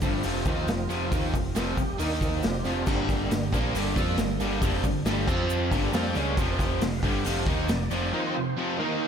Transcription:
0.01 G1 G2 D3 F3 G3 C4 F4, kick, open hi-hat, shaker
0.23 F1 F2 C3 F3, open hi-hat, shaker
0.45 D#2 D#3 A#3 D#4, kick, open hi-hat, shaker
0.67 F1 F2 C3, snare, open hi-hat, shaker
0.89 F2 C3 F3, open hi-hat, shaker
1.11 D#2 D#3 F3 A#3 C4 D#4 F4, kick, open hi-hat, shaker
1.33 F1 F2 C3, kick, open hi-hat, shaker
1.55 F1 F2 C3 F3, snare, open hi-hat, shaker
1.77 F1 F2 C3 G4, kick, open hi-hat, shaker
1.99 D#2 D#3 A#3 D4 D#4, open hi-hat, shaker
2.21 C4, kick, open hi-hat, shaker
2.38 F3 C4 F#4
2.42 F1 F2 C3 F4 G4, snare, open hi-hat, shaker
2.64 F1 F2 C3 F3 D4, open hi-hat, shaker
2.85 G1 G2 D3 G3 A#3 C4 D4, kick, crash, shaker
3.06 F#4 G4, kick, open hi-hat, shaker
3.31 G1 G2 D3 D4, snare, open hi-hat, shaker
3.52 A#1 A#2 F3 A#3 C4, kick, open hi-hat, shaker
3.74 G1 G2 D3 G3 A#3, open hi-hat, shaker
3.96 F2 F3 C4 F4, kick, open hi-hat, shaker
4.18 G1 G2 D3, snare, open hi-hat, shaker
4.40 G1 G2 D3 G3, open hi-hat, shaker
4.62 F1 F2 C3 F3 G3 A#3 D4, kick, open hi-hat, shaker
4.84 G1 G2 D3, kick, open hi-hat, shaker
5.05 G1 G2 D3 G3, snare, open hi-hat, shaker
5.27 F2 F3 C4 F4, kick, crash, shaker
5.50 shaker
5.71 G1 G2 D3 G3 A#3 D4, kick, open hi-hat, shaker
5.93 F2 F3 C4 F4 G5, snare, open hi-hat, shaker
6.15 C#2 C#3 G#3 C#4 F5, open hi-hat, shaker
6.36 F1 F2 C3 F3 C4 F4 G5, kick, open hi-hat, shaker
6.59 kick, open hi-hat, shaker
6.78 F1 F2 C3 E5, snare, open hi-hat, shaker
6.83 F5
6.98 B4
7.03 G1 G2 D3 G3 C5, kick, open hi-hat
7.24 F1 F2 C3 F3, open hi-hat, shaker
7.46 D#2 D#3 A#3 D#4, kick, open hi-hat
7.68 F1 F2 C3 D5, snare, open hi-hat, shaker
7.90 F1 F2 C3 F3, open hi-hat, shaker
8.13 D#3 F3 A#3 C4 D#4 F4 C5
8.35 F2 C3
8.57 F2 C3 F3
8.75 D#3 A#3 D#4 E5 F5
8.79 D#3 A#3 D#4 C5
9.02 A#4 G5

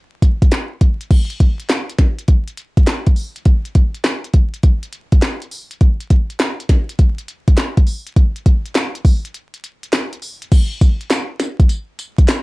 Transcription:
0.22 kick, closed hi-hat
0.42 kick, closed hi-hat
0.52 snare, clap, closed hi-hat
0.81 kick, closed hi-hat
1.01 closed hi-hat
1.11 kick, closed hi-hat, crash
1.30 closed hi-hat
1.40 kick, closed hi-hat
1.60 closed hi-hat
1.69 snare, clap, closed hi-hat
1.90 closed hi-hat
1.98 kick, snare, closed hi-hat
2.19 closed hi-hat
2.28 kick, closed hi-hat
2.48 closed hi-hat
2.57 closed hi-hat
2.77 kick, closed hi-hat
2.87 snare, clap, closed hi-hat
3.07 kick, closed hi-hat
3.16 open hi-hat
3.36 closed hi-hat
3.45 kick, closed hi-hat
3.65 closed hi-hat
3.75 kick, closed hi-hat
3.95 closed hi-hat
4.04 snare, clap, closed hi-hat
4.24 closed hi-hat
4.34 kick, closed hi-hat
4.54 closed hi-hat
4.63 kick, closed hi-hat
4.83 closed hi-hat
4.93 closed hi-hat
5.12 kick, closed hi-hat
5.22 snare, clap, closed hi-hat
5.42 closed hi-hat
5.51 open hi-hat
5.71 closed hi-hat
5.81 kick, closed hi-hat
6.01 closed hi-hat
6.10 kick, closed hi-hat
6.30 closed hi-hat
6.40 snare, clap, closed hi-hat
6.60 closed hi-hat
6.69 kick, snare, closed hi-hat
6.89 closed hi-hat
6.99 kick, closed hi-hat
7.18 closed hi-hat
7.28 closed hi-hat
7.48 kick, closed hi-hat
7.57 snare, clap, closed hi-hat
7.77 kick, closed hi-hat
7.87 open hi-hat
8.07 closed hi-hat
8.16 kick, closed hi-hat
8.36 closed hi-hat
8.46 kick, closed hi-hat
8.66 closed hi-hat
8.75 snare, clap, closed hi-hat
8.95 closed hi-hat
9.05 kick, open hi-hat
9.25 closed hi-hat
9.34 closed hi-hat
9.54 closed hi-hat
9.64 closed hi-hat
9.83 closed hi-hat
9.93 snare, clap, closed hi-hat
10.13 closed hi-hat
10.22 open hi-hat
10.42 closed hi-hat
10.52 kick, closed hi-hat, crash, tambourine
10.81 kick, closed hi-hat, tambourine
11.01 closed hi-hat
11.10 snare, clap, closed hi-hat, tambourine
11.40 snare, closed hi-hat, tambourine
11.60 kick, closed hi-hat
11.69 closed hi-hat, tambourine
11.99 closed hi-hat, tambourine
12.18 kick, closed hi-hat
12.28 snare, clap, closed hi-hat, tambourine

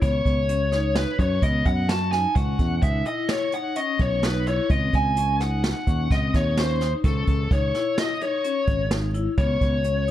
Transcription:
0.02 C#2 B3 C#5, kick, closed hi-hat
0.25 C#2, kick, closed hi-hat
0.49 C#4, closed hi-hat
0.72 D#4, snare, closed hi-hat
0.95 B4, snare, closed hi-hat
1.19 F#2 C#4 C#5, kick, closed hi-hat
1.42 C#2 B3 D#5, kick, closed hi-hat
1.65 F#2 F#5, kick, closed hi-hat
1.89 C#4 A5, snare, closed hi-hat
2.12 D#4 G#5, snare, closed hi-hat
2.35 C#2 C#4 F#5, kick, closed hi-hat
2.59 E2, kick, closed hi-hat
2.82 C#2 D#4 E5, kick, closed hi-hat
3.06 E4 D#5, closed hi-hat
3.29 C#5, snare, closed hi-hat
3.52 D#4 F#5, closed hi-hat
3.76 C#4 D#5, closed hi-hat
3.99 B1 C#5, kick, closed hi-hat
4.23 D#4 B4, snare, closed hi-hat
4.47 E4 C#5, closed hi-hat
4.70 C#2 C4 D#5, kick, closed hi-hat
4.93 C#2 G#5, kick, closed hi-hat
5.17 C#4, closed hi-hat
5.40 D#4 F#5, snare, closed hi-hat
5.64 F#5, snare, closed hi-hat
5.87 D#2 C#4, kick, closed hi-hat
6.11 C#2 C4 D#5, kick, snare, closed hi-hat
6.34 D#2 C#5, kick, snare, closed hi-hat
6.57 C#4 C5, snare, closed hi-hat
6.81 D#4, snare, closed hi-hat
7.04 C#2 C#4 A4, kick, closed hi-hat
7.27 C#2, kick, closed hi-hat
7.51 C#2 D#4 C#5, kick, closed hi-hat
7.75 E4, snare, closed hi-hat
7.98 D#5, snare, closed hi-hat
8.21 D#4 C#5, closed hi-hat
8.44 C#4, closed hi-hat
8.68 G#1, kick, closed hi-hat
8.91 D#4, snare, closed hi-hat
9.14 E4, closed hi-hat
9.38 C#2 B3 C#5, kick, closed hi-hat
9.61 C#2, kick, closed hi-hat
9.84 C#4, closed hi-hat

